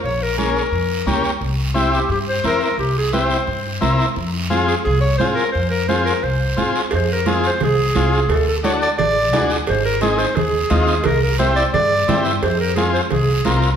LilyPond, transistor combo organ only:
\new Staff \with { instrumentName = "Transistor combo organ" } { \time 4/4 \key f \minor \tempo 4 = 174 r4 <bes des' aes'>8 r4. <bes des' g'>8 r8 | r4 <c' e' g'>8 r4. <c' e' bes'>8 r8 | r4 <c' e' g'>8 r4. <c' e' bes'>8 r8 | r4 <c' f' aes'>8 r4. <c' f' aes'>8 r8 |
r4 <c' f' aes'>8 r4. <c' f' aes'>8 r8 | \key f \dorian r4 <c' f' aes'>8 r4. <c' f' aes'>8 r8 | r4 <d' fis' a'>8 r4. <d' fis' aes'>8 r8 | r4 <c' ees' aes'>8 r4. <c' ees' f'>8 r8 |
r4 <c' e' g'>8 r4. <c' e' g'>8 r8 | r4 <c' f' aes'>8 r4. <c' f' bes'>8 r8 | }